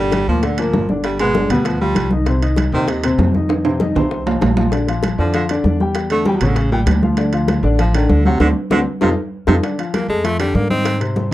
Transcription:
Already playing: upright bass G1, upright piano D3 D4 D5, baritone saxophone G3
0.12 high bongo, high conga, high timbale
0.28 upright bass D2, upright piano A#2 A#3 A#4, baritone saxophone F3, high conga
0.43 upright piano D3 D4 D5, baritone saxophone D3, high bongo, high conga, high timbale
0.58 upright piano A#2 A#3 A#4, baritone saxophone F3, high bongo, high conga, high timbale
0.73 upright bass G1, high bongo, low bongo, high conga, low timbale
0.89 upright piano D3 D4 D5, high bongo, high conga
1.04 baritone saxophone G3, high bongo, high conga, high timbale
1.19 upright piano B2 B3 B4, baritone saxophone G#3, high bongo, high conga, high timbale
1.35 upright piano D3 D4 D5, high bongo, high conga
1.50 upright bass D2, upright piano B2 B3 B4, baritone saxophone G3, high conga, low conga, high timbale
1.65 baritone saxophone F3, high bongo, high conga, high timbale
1.80 upright piano F3 F4 F5, baritone saxophone G3, high bongo, high conga
1.95 upright bass C2, high bongo, low bongo, high conga, high timbale
2.11 upright piano D#3 D#4 D#5, high bongo, high conga
2.26 upright piano C3 C4 C5, high bongo, high conga, high timbale
2.41 upright piano D#3 D#4 D#5, high bongo, high conga, high timbale
2.56 high bongo, high conga, high timbale
2.72 upright bass D#2, upright piano C3 C4 C5, baritone saxophone D#3, high conga
2.88 baritone saxophone C3, upright piano D#3 D#4 D#5, high bongo, high conga, high timbale
3.04 upright piano C3 C4 C5, high bongo, high conga, high timbale
3.18 upright bass F2, high bongo, low bongo, high conga, low timbale
3.34 upright piano D#3 D#4 D#5, high bongo, high conga
3.49 high bongo, high conga, high timbale
3.65 upright piano C3 C4 C5, high bongo, high conga, high timbale
3.80 upright piano D#3 D#4 D#5, high bongo, high conga
3.95 upright bass C2, upright piano C3 C4 C5, high conga, low conga, high timbale
4.11 high bongo, high conga
4.26 upright piano F3 F4 F5, high bongo, high conga, low timbale
4.41 upright bass A#1, high bongo, low bongo, high conga, low timbale
4.57 upright piano F3 F4 F5, high bongo, high conga, low timbale
4.72 upright piano D3 D4 D5, high bongo, high conga, high timbale
4.87 upright piano F3 F4 F5, high bongo, high conga, high timbale
5.03 high bongo, high conga, high timbale
5.18 upright bass F2, upright piano D3 D4 D5, baritone saxophone F3, high conga
5.34 baritone saxophone D3, upright piano F3 F4 F5, high bongo, high conga, high timbale
5.49 upright piano D3 D4 D5, high bongo, high conga, high timbale
5.64 upright bass E2, high bongo, low bongo, high conga
5.80 upright piano G3 G4 G5, high bongo, high conga
5.95 high bongo, high conga, high timbale
6.10 upright piano D3 D4 D5, baritone saxophone A3, high bongo, high conga, high timbale
6.25 baritone saxophone G3, upright piano G3 G4 G5, high bongo, high conga
6.36 baritone saxophone F#3
6.41 upright bass A1, upright piano C#3 C#4 C#5, high conga, low conga, high timbale
6.47 baritone saxophone D3
6.56 baritone saxophone C#3, high bongo, high conga, high timbale
6.71 baritone saxophone A#2, upright piano G3 G4 G5, high bongo, high conga
6.86 upright bass D2, high bongo, low bongo, high conga, high timbale, low timbale
7.02 upright piano F3 F4 F5, high bongo, high conga
7.17 upright piano D3 D4 D5, high bongo, high conga, high timbale
7.33 upright piano F3 F4 F5, high bongo, high timbale
7.48 high bongo, high conga, high timbale
7.63 upright bass A1, upright piano D3 D4 D5, high conga
7.79 baritone saxophone F3, upright piano F3 F4 F5, high bongo, high conga, high timbale
7.94 upright piano D3 D4 D5, baritone saxophone D#3, high bongo, high conga, high timbale
8.09 upright bass D2, baritone saxophone D3, high bongo, low bongo, high conga
8.25 baritone saxophone C3, upright piano F#3 F#4 F#5, high bongo, high conga
8.40 upright bass D2, baritone saxophone D3, upright piano C4 D4 F#4, high bongo, high conga, high timbale
8.70 upright bass D2, baritone saxophone D3, upright piano C4 D4 F#4, high bongo, high conga, high timbale
9.01 upright bass F2, baritone saxophone C3, upright piano D#4 F4 A4, high bongo, high conga, high timbale
9.47 upright bass F2, baritone saxophone C3, upright piano D#4 F4 A4, high bongo, high conga, high timbale
9.63 upright piano D3 D4 D5, high bongo, high conga, high timbale
9.79 upright piano F3 F4 F5, high bongo, high conga, high timbale
9.94 tenor saxophone A#3, high bongo, high conga, high timbale
10.08 upright bass F2, tenor saxophone G#3, upright piano A3 A4 A5, high conga
10.24 upright piano F3 F4 F5, tenor saxophone A3, high bongo, high conga, high timbale
10.39 upright piano D3 D4 D5, tenor saxophone G3, high bongo, high conga, high timbale
10.55 upright bass G#2, tenor saxophone A#3, high bongo, low bongo, high conga
10.70 upright piano D#3 D#4 D#5, tenor saxophone C4, high bongo, high conga
10.85 high bongo, high timbale
11.00 upright piano C3 C4 C5, high bongo, high timbale
11.16 high bongo, high conga

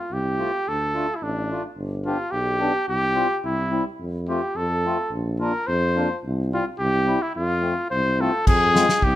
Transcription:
Already playing: trumpet F4
0.11 tuba C2, trumpet G4
0.38 accordion A3 C4 F4
0.67 tuba D2, trumpet A4
0.94 accordion A3 D4 F4
1.16 trumpet E4
1.21 tuba A1, trumpet D4
1.50 accordion A3 D4 F4
1.77 tuba G1
2.05 accordion B3 D4 G4, trumpet F4
2.31 tuba B1, trumpet G4
2.59 accordion B3 D4 G4
2.88 tuba C2, trumpet G4
3.14 accordion G3 C4 F4
3.44 tuba C2, trumpet E4
3.71 accordion G3 C4 E4
4.00 tuba F2
4.28 accordion A3 C4 F4, trumpet G4
4.55 tuba F2, trumpet A4
4.85 accordion A3 C4 F4
5.11 tuba A#1
5.40 accordion A#3 D4 F4, trumpet A#4
5.67 tuba F2, trumpet C5
5.96 accordion A#3 D4 F4
6.25 tuba C2
6.52 accordion G3 C4 F4, trumpet F4
6.79 tuba C2, trumpet G4
7.05 accordion G3 C4 E4
7.22 trumpet E4
7.35 tuba F2, trumpet F4
7.61 accordion A3 C4 F4
7.91 tuba C2, trumpet C5
8.18 accordion A3 C4 F4, trumpet A4
8.47 tuba F2, trumpet G#4, kick, crash
8.73 accordion G#3 C4 F4, snare, hi-hat pedal
8.89 snare
9.02 tuba C2, trumpet G4, kick

